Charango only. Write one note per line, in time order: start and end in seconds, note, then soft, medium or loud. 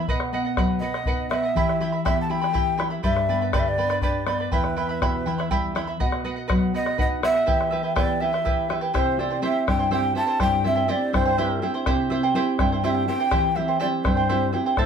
0.09 0.32 B4 medium
0.09 0.32 D#5 medium
0.09 0.33 F#5 medium
0.33 0.45 B4 medium
0.33 0.45 D#5 medium
0.33 0.43 F#5 medium
0.45 0.57 D#5 soft
0.45 0.57 F#5 medium
0.58 0.81 B4 medium
0.58 0.81 D#5 medium
0.58 0.82 F#5 medium
0.82 0.94 B4 medium
0.82 0.95 D#5 medium
0.82 0.94 F#5 medium
0.95 1.06 D#5 soft
0.95 1.07 F#5 medium
1.07 1.30 B4 medium
1.07 1.32 D#5 medium
1.07 1.32 F#5 medium
1.32 1.44 B4 soft
1.32 1.44 D#5 medium
1.32 1.42 F#5 medium
1.43 1.57 D#5 soft
1.43 1.56 F#5 medium
1.56 1.80 E4 medium
1.56 1.81 G4 medium
1.56 1.80 E5 medium
1.56 1.79 G5 medium
1.56 1.80 B5 medium
1.80 1.93 E4 medium
1.80 1.92 E5 medium
1.80 1.93 G5 medium
1.80 1.91 B5 medium
1.92 2.04 E4 soft
1.92 2.05 E5 soft
1.92 2.05 B5 soft
2.05 2.29 E4 medium
2.05 2.30 G4 medium
2.05 2.29 E5 medium
2.05 2.28 G5 medium
2.05 2.30 B5 medium
2.30 2.42 E4 medium
2.30 2.41 E5 medium
2.30 2.42 G5 soft
2.30 2.40 B5 medium
2.41 2.53 E4 soft
2.41 2.53 E5 soft
2.41 2.54 B5 soft
2.53 2.77 E4 medium
2.53 2.79 G4 medium
2.53 2.77 E5 medium
2.53 2.76 G5 medium
2.53 2.78 B5 medium
2.77 2.90 E4 medium
2.77 2.90 E5 medium
2.77 2.91 G5 soft
2.77 2.89 B5 medium
2.90 3.03 E4 soft
2.90 3.03 E5 soft
2.90 3.03 B5 soft
3.03 3.28 G4 medium
3.03 3.28 B4 medium
3.03 3.29 D5 medium
3.03 3.28 G5 medium
3.03 3.29 B5 medium
3.29 3.41 B4 medium
3.29 3.41 D5 medium
3.29 3.41 G5 soft
3.29 3.40 B5 medium
3.41 3.52 B4 soft
3.41 3.52 D5 soft
3.41 3.53 B5 soft
3.53 3.78 G4 medium
3.53 3.77 B4 medium
3.53 3.78 D5 medium
3.53 3.77 G5 medium
3.53 3.78 B5 medium
3.78 3.91 B4 medium
3.78 3.90 D5 soft
3.78 3.90 G5 soft
3.78 3.89 B5 medium
3.91 4.02 B4 soft
3.91 4.02 D5 soft
3.91 4.02 B5 medium
4.03 4.27 G4 medium
4.03 4.26 B4 medium
4.03 4.26 D5 medium
4.03 4.26 G5 medium
4.03 4.27 B5 medium
4.27 4.40 B4 medium
4.27 4.39 D5 soft
4.27 4.40 G5 medium
4.27 4.39 B5 medium
4.40 4.52 B4 soft
4.40 4.52 D5 soft
4.40 4.52 B5 soft
4.52 4.76 E4 medium
4.52 4.77 G4 medium
4.52 4.76 E5 medium
4.52 4.75 G5 medium
4.52 4.77 B5 medium
4.76 4.89 E4 medium
4.76 4.89 E5 medium
4.76 4.89 G5 medium
4.76 4.88 B5 medium
4.89 5.01 E4 soft
4.89 5.01 E5 soft
4.89 5.01 B5 soft
5.02 5.26 E4 medium
5.02 5.26 G4 medium
5.02 5.26 E5 medium
5.02 5.25 G5 medium
5.02 5.26 B5 medium
5.26 5.38 E4 medium
5.26 5.38 E5 medium
5.26 5.38 G5 medium
5.26 5.37 B5 medium
5.38 5.50 E4 soft
5.38 5.50 E5 soft
5.38 5.51 B5 medium
5.51 5.74 E4 medium
5.51 5.75 G4 medium
5.51 5.75 E5 medium
5.51 5.74 G5 medium
5.51 5.75 B5 medium
5.75 5.88 E4 medium
5.75 5.87 E5 medium
5.75 5.87 G5 medium
5.75 5.86 B5 medium
5.87 6.00 E4 soft
5.87 6.00 E5 soft
5.87 6.00 B5 medium
6.00 6.23 B4 medium
6.00 6.24 D#5 medium
6.00 6.25 F#5 medium
6.24 6.37 B4 medium
6.24 6.37 D#5 medium
6.24 6.35 F#5 medium
6.36 6.47 D#5 soft
6.36 6.48 F#5 medium
6.48 6.73 B4 medium
6.48 6.73 D#5 medium
6.48 6.73 F#5 medium
6.74 6.86 B4 medium
6.74 6.85 D#5 medium
6.74 6.84 F#5 medium
6.85 6.98 D#5 soft
6.85 6.98 F#5 medium
6.98 7.21 B4 medium
6.98 7.22 D#5 medium
6.98 7.23 F#5 medium
7.23 7.35 B4 soft
7.23 7.35 D#5 medium
7.23 7.34 F#5 medium
7.35 7.47 D#5 soft
7.35 7.46 F#5 soft
7.46 7.70 E4 medium
7.46 7.71 G4 medium
7.46 7.71 B4 medium
7.46 7.69 E5 medium
7.46 7.71 G5 medium
7.71 7.84 E4 medium
7.71 7.83 B4 medium
7.71 7.83 E5 medium
7.71 7.82 G5 medium
7.83 7.95 E4 soft
7.83 7.95 B4 soft
7.83 7.95 G5 soft
7.96 8.20 E4 medium
7.96 8.20 G4 medium
7.96 8.20 B4 medium
7.96 8.19 E5 medium
7.96 8.21 G5 medium
8.20 8.33 E4 soft
8.20 8.32 B4 medium
8.20 8.33 E5 soft
8.20 8.32 G5 medium
8.33 8.44 E4 soft
8.33 8.45 B4 soft
8.33 8.45 G5 soft
8.45 8.69 E4 medium
8.45 8.69 G4 medium
8.45 8.69 B4 medium
8.45 8.68 E5 medium
8.45 8.69 G5 medium
8.69 8.81 E4 medium
8.69 8.81 B4 medium
8.69 8.81 E5 soft
8.69 8.80 G5 medium
8.81 8.93 E4 soft
8.81 8.94 B4 soft
8.81 8.94 G5 medium
8.94 9.18 E4 medium
8.94 9.18 G4 medium
8.94 9.18 C5 medium
8.94 9.18 E5 medium
8.94 9.19 G5 medium
9.19 9.31 E4 medium
9.19 9.31 C5 medium
9.19 9.31 E5 medium
9.19 9.29 G5 medium
9.30 9.41 E4 soft
9.30 9.42 C5 soft
9.30 9.42 G5 soft
9.42 9.67 E4 medium
9.42 9.67 G4 medium
9.42 9.67 C5 medium
9.42 9.66 E5 medium
9.42 9.67 G5 medium
9.67 9.79 E4 medium
9.67 9.79 C5 medium
9.67 9.79 E5 soft
9.67 9.78 G5 medium
9.79 9.90 E4 soft
9.79 9.91 C5 soft
9.79 9.91 G5 soft
9.91 10.15 E4 medium
9.91 10.15 G4 medium
9.91 10.15 C5 medium
9.91 10.14 E5 medium
9.91 10.16 G5 medium
10.15 10.27 E4 medium
10.15 10.26 C5 medium
10.15 10.27 E5 medium
10.15 10.26 G5 medium
10.27 10.40 E4 soft
10.27 10.40 C5 soft
10.27 10.40 G5 medium
10.40 10.63 E4 medium
10.40 10.64 G4 medium
10.40 10.64 C5 medium
10.40 10.63 E5 medium
10.40 10.64 G5 medium
10.64 10.76 E4 medium
10.64 10.75 C5 medium
10.64 10.76 E5 medium
10.64 10.74 G5 medium
10.76 10.87 E4 soft
10.76 10.88 C5 soft
10.76 10.88 G5 medium
10.88 11.12 E4 medium
10.88 11.13 G4 medium
10.88 11.13 C5 medium
10.88 11.12 E5 medium
10.88 11.13 G5 medium
11.13 11.26 E4 medium
11.13 11.25 C5 medium
11.13 11.25 E5 medium
11.13 11.24 G5 medium
11.26 11.37 E4 soft
11.26 11.37 C5 soft
11.26 11.38 G5 medium
11.38 11.61 E4 medium
11.38 11.62 G4 medium
11.38 11.62 C5 medium
11.38 11.61 E5 medium
11.38 11.62 G5 medium
11.62 11.74 E4 medium
11.62 11.74 C5 medium
11.62 11.74 E5 medium
11.62 11.73 G5 medium
11.74 11.86 E4 soft
11.74 11.86 C5 medium
11.74 11.86 G5 medium
11.86 12.10 E4 medium
11.86 12.11 G4 medium
11.86 12.10 C5 medium
11.86 12.09 E5 medium
11.86 12.10 G5 medium
12.10 12.23 E4 medium
12.10 12.23 C5 medium
12.10 12.22 E5 medium
12.10 12.22 G5 medium
12.23 12.35 E4 soft
12.23 12.35 C5 medium
12.23 12.35 G5 medium
12.35 12.59 E4 medium
12.35 12.59 G4 medium
12.35 12.59 C5 medium
12.35 12.58 E5 medium
12.35 12.59 G5 medium
12.59 12.72 E4 medium
12.59 12.71 C5 medium
12.59 12.71 E5 medium
12.59 12.71 G5 medium
12.72 12.83 E4 soft
12.72 12.83 C5 soft
12.72 12.84 G5 medium
12.84 13.08 E4 medium
12.84 13.08 G4 medium
12.84 13.08 C5 medium
12.84 13.07 E5 medium
12.84 13.08 G5 medium
13.08 13.20 E4 medium
13.08 13.19 C5 medium
13.08 13.20 E5 medium
13.08 13.19 G5 medium
13.20 13.30 E4 soft
13.20 13.30 C5 soft
13.20 13.31 G5 soft
13.31 13.55 E4 medium
13.31 13.56 G4 medium
13.31 13.55 C5 medium
13.31 13.54 E5 medium
13.31 13.56 G5 medium
13.56 13.68 E4 medium
13.56 13.68 C5 medium
13.56 13.68 E5 medium
13.56 13.67 G5 medium
13.68 13.79 E4 soft
13.68 13.79 C5 soft
13.68 13.79 G5 soft
13.79 14.04 E4 medium
13.79 14.04 G4 medium
13.79 14.04 C5 medium
13.79 14.03 E5 medium
13.79 14.05 G5 medium
14.04 14.17 E4 medium
14.04 14.16 C5 medium
14.04 14.16 E5 soft
14.04 14.16 G5 medium
14.17 14.28 E4 soft
14.17 14.29 C5 soft
14.17 14.28 G5 medium
14.29 14.52 E4 medium
14.29 14.53 G4 medium
14.29 14.52 C5 medium
14.29 14.51 E5 medium
14.29 14.53 G5 medium
14.52 14.65 E4 medium
14.52 14.65 C5 medium
14.52 14.65 E5 medium
14.52 14.65 G5 medium
14.66 14.77 E4 soft
14.66 14.77 C5 soft
14.66 14.78 G5 medium
14.78 14.86 E4 medium
14.78 14.86 A4 medium
14.78 14.86 C5 medium
14.78 14.86 E5 medium
14.78 14.86 A5 medium